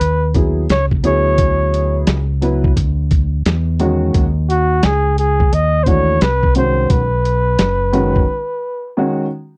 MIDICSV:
0, 0, Header, 1, 5, 480
1, 0, Start_track
1, 0, Key_signature, 5, "major"
1, 0, Tempo, 689655
1, 964, Time_signature, 4, 2, 24, 8
1, 6663, End_track
2, 0, Start_track
2, 0, Title_t, "Flugelhorn"
2, 0, Program_c, 0, 56
2, 0, Note_on_c, 0, 71, 99
2, 251, Note_off_c, 0, 71, 0
2, 495, Note_on_c, 0, 73, 98
2, 600, Note_off_c, 0, 73, 0
2, 736, Note_on_c, 0, 73, 100
2, 1422, Note_off_c, 0, 73, 0
2, 3131, Note_on_c, 0, 66, 95
2, 3375, Note_on_c, 0, 68, 99
2, 3385, Note_off_c, 0, 66, 0
2, 3609, Note_off_c, 0, 68, 0
2, 3612, Note_on_c, 0, 68, 91
2, 3855, Note_on_c, 0, 75, 95
2, 3866, Note_off_c, 0, 68, 0
2, 4061, Note_on_c, 0, 72, 73
2, 4072, Note_off_c, 0, 75, 0
2, 4094, Note_on_c, 0, 73, 102
2, 4104, Note_off_c, 0, 72, 0
2, 4332, Note_on_c, 0, 71, 98
2, 4343, Note_off_c, 0, 73, 0
2, 4568, Note_off_c, 0, 71, 0
2, 4572, Note_on_c, 0, 72, 96
2, 4809, Note_on_c, 0, 71, 90
2, 4819, Note_off_c, 0, 72, 0
2, 6246, Note_off_c, 0, 71, 0
2, 6663, End_track
3, 0, Start_track
3, 0, Title_t, "Upright piano"
3, 0, Program_c, 1, 0
3, 238, Note_on_c, 1, 54, 63
3, 241, Note_on_c, 1, 59, 53
3, 245, Note_on_c, 1, 64, 55
3, 248, Note_on_c, 1, 68, 66
3, 430, Note_off_c, 1, 54, 0
3, 432, Note_off_c, 1, 59, 0
3, 434, Note_off_c, 1, 64, 0
3, 435, Note_off_c, 1, 68, 0
3, 719, Note_on_c, 1, 54, 70
3, 724, Note_on_c, 1, 59, 67
3, 727, Note_on_c, 1, 64, 66
3, 730, Note_on_c, 1, 68, 82
3, 1504, Note_off_c, 1, 54, 0
3, 1506, Note_off_c, 1, 59, 0
3, 1508, Note_off_c, 1, 64, 0
3, 1509, Note_off_c, 1, 68, 0
3, 1681, Note_on_c, 1, 54, 73
3, 1685, Note_on_c, 1, 59, 67
3, 1689, Note_on_c, 1, 64, 61
3, 1692, Note_on_c, 1, 71, 81
3, 1871, Note_off_c, 1, 54, 0
3, 1874, Note_off_c, 1, 59, 0
3, 1875, Note_off_c, 1, 64, 0
3, 1877, Note_off_c, 1, 71, 0
3, 2641, Note_on_c, 1, 51, 73
3, 2645, Note_on_c, 1, 56, 69
3, 2648, Note_on_c, 1, 61, 68
3, 2651, Note_on_c, 1, 66, 90
3, 2945, Note_off_c, 1, 51, 0
3, 2947, Note_off_c, 1, 56, 0
3, 2948, Note_off_c, 1, 61, 0
3, 2950, Note_off_c, 1, 66, 0
3, 4079, Note_on_c, 1, 52, 64
3, 4083, Note_on_c, 1, 57, 56
3, 4085, Note_on_c, 1, 62, 59
3, 4088, Note_on_c, 1, 66, 74
3, 4271, Note_off_c, 1, 52, 0
3, 4272, Note_off_c, 1, 57, 0
3, 4274, Note_off_c, 1, 62, 0
3, 4275, Note_off_c, 1, 66, 0
3, 4560, Note_on_c, 1, 51, 63
3, 4563, Note_on_c, 1, 56, 56
3, 4564, Note_on_c, 1, 61, 58
3, 4570, Note_on_c, 1, 66, 69
3, 4864, Note_off_c, 1, 51, 0
3, 4865, Note_off_c, 1, 56, 0
3, 4866, Note_off_c, 1, 61, 0
3, 4869, Note_off_c, 1, 66, 0
3, 5516, Note_on_c, 1, 51, 81
3, 5520, Note_on_c, 1, 56, 70
3, 5524, Note_on_c, 1, 61, 74
3, 5527, Note_on_c, 1, 66, 86
3, 5709, Note_off_c, 1, 51, 0
3, 5711, Note_off_c, 1, 56, 0
3, 5713, Note_off_c, 1, 61, 0
3, 5714, Note_off_c, 1, 66, 0
3, 6243, Note_on_c, 1, 51, 76
3, 6245, Note_on_c, 1, 56, 77
3, 6250, Note_on_c, 1, 61, 76
3, 6254, Note_on_c, 1, 66, 89
3, 6432, Note_off_c, 1, 51, 0
3, 6434, Note_off_c, 1, 56, 0
3, 6436, Note_off_c, 1, 61, 0
3, 6438, Note_off_c, 1, 66, 0
3, 6663, End_track
4, 0, Start_track
4, 0, Title_t, "Fingered electric bass"
4, 0, Program_c, 2, 33
4, 5, Note_on_c, 2, 39, 82
4, 461, Note_off_c, 2, 39, 0
4, 486, Note_on_c, 2, 37, 85
4, 713, Note_off_c, 2, 37, 0
4, 726, Note_on_c, 2, 38, 91
4, 1417, Note_off_c, 2, 38, 0
4, 1446, Note_on_c, 2, 37, 98
4, 1901, Note_off_c, 2, 37, 0
4, 1925, Note_on_c, 2, 38, 86
4, 2380, Note_off_c, 2, 38, 0
4, 2408, Note_on_c, 2, 40, 97
4, 2862, Note_off_c, 2, 40, 0
4, 2885, Note_on_c, 2, 39, 102
4, 3340, Note_off_c, 2, 39, 0
4, 3369, Note_on_c, 2, 37, 96
4, 3823, Note_off_c, 2, 37, 0
4, 3847, Note_on_c, 2, 39, 96
4, 4301, Note_off_c, 2, 39, 0
4, 4327, Note_on_c, 2, 36, 94
4, 4782, Note_off_c, 2, 36, 0
4, 4804, Note_on_c, 2, 35, 98
4, 5260, Note_off_c, 2, 35, 0
4, 5285, Note_on_c, 2, 30, 97
4, 5741, Note_off_c, 2, 30, 0
4, 6663, End_track
5, 0, Start_track
5, 0, Title_t, "Drums"
5, 7, Note_on_c, 9, 42, 89
5, 77, Note_off_c, 9, 42, 0
5, 240, Note_on_c, 9, 42, 61
5, 245, Note_on_c, 9, 36, 96
5, 309, Note_off_c, 9, 42, 0
5, 314, Note_off_c, 9, 36, 0
5, 484, Note_on_c, 9, 42, 86
5, 489, Note_on_c, 9, 38, 101
5, 553, Note_off_c, 9, 42, 0
5, 558, Note_off_c, 9, 38, 0
5, 636, Note_on_c, 9, 36, 83
5, 706, Note_off_c, 9, 36, 0
5, 722, Note_on_c, 9, 42, 76
5, 792, Note_off_c, 9, 42, 0
5, 960, Note_on_c, 9, 42, 80
5, 963, Note_on_c, 9, 36, 112
5, 1030, Note_off_c, 9, 42, 0
5, 1033, Note_off_c, 9, 36, 0
5, 1210, Note_on_c, 9, 42, 71
5, 1280, Note_off_c, 9, 42, 0
5, 1440, Note_on_c, 9, 42, 87
5, 1443, Note_on_c, 9, 38, 116
5, 1510, Note_off_c, 9, 42, 0
5, 1512, Note_off_c, 9, 38, 0
5, 1686, Note_on_c, 9, 42, 71
5, 1755, Note_off_c, 9, 42, 0
5, 1839, Note_on_c, 9, 36, 91
5, 1909, Note_off_c, 9, 36, 0
5, 1925, Note_on_c, 9, 36, 104
5, 1927, Note_on_c, 9, 42, 97
5, 1994, Note_off_c, 9, 36, 0
5, 1997, Note_off_c, 9, 42, 0
5, 2163, Note_on_c, 9, 42, 62
5, 2167, Note_on_c, 9, 36, 97
5, 2233, Note_off_c, 9, 42, 0
5, 2236, Note_off_c, 9, 36, 0
5, 2405, Note_on_c, 9, 42, 86
5, 2410, Note_on_c, 9, 38, 104
5, 2475, Note_off_c, 9, 42, 0
5, 2480, Note_off_c, 9, 38, 0
5, 2642, Note_on_c, 9, 42, 69
5, 2711, Note_off_c, 9, 42, 0
5, 2884, Note_on_c, 9, 36, 111
5, 2884, Note_on_c, 9, 42, 80
5, 2953, Note_off_c, 9, 42, 0
5, 2954, Note_off_c, 9, 36, 0
5, 3131, Note_on_c, 9, 42, 71
5, 3201, Note_off_c, 9, 42, 0
5, 3360, Note_on_c, 9, 42, 86
5, 3363, Note_on_c, 9, 38, 111
5, 3430, Note_off_c, 9, 42, 0
5, 3433, Note_off_c, 9, 38, 0
5, 3605, Note_on_c, 9, 42, 72
5, 3675, Note_off_c, 9, 42, 0
5, 3758, Note_on_c, 9, 36, 91
5, 3828, Note_off_c, 9, 36, 0
5, 3847, Note_on_c, 9, 42, 90
5, 3917, Note_off_c, 9, 42, 0
5, 4081, Note_on_c, 9, 42, 61
5, 4085, Note_on_c, 9, 36, 89
5, 4151, Note_off_c, 9, 42, 0
5, 4155, Note_off_c, 9, 36, 0
5, 4323, Note_on_c, 9, 42, 84
5, 4329, Note_on_c, 9, 38, 109
5, 4393, Note_off_c, 9, 42, 0
5, 4398, Note_off_c, 9, 38, 0
5, 4476, Note_on_c, 9, 36, 93
5, 4545, Note_off_c, 9, 36, 0
5, 4558, Note_on_c, 9, 42, 76
5, 4628, Note_off_c, 9, 42, 0
5, 4801, Note_on_c, 9, 42, 81
5, 4802, Note_on_c, 9, 36, 117
5, 4871, Note_off_c, 9, 42, 0
5, 4872, Note_off_c, 9, 36, 0
5, 5048, Note_on_c, 9, 42, 77
5, 5118, Note_off_c, 9, 42, 0
5, 5280, Note_on_c, 9, 42, 89
5, 5283, Note_on_c, 9, 38, 116
5, 5350, Note_off_c, 9, 42, 0
5, 5352, Note_off_c, 9, 38, 0
5, 5522, Note_on_c, 9, 42, 71
5, 5592, Note_off_c, 9, 42, 0
5, 5677, Note_on_c, 9, 36, 88
5, 5747, Note_off_c, 9, 36, 0
5, 6663, End_track
0, 0, End_of_file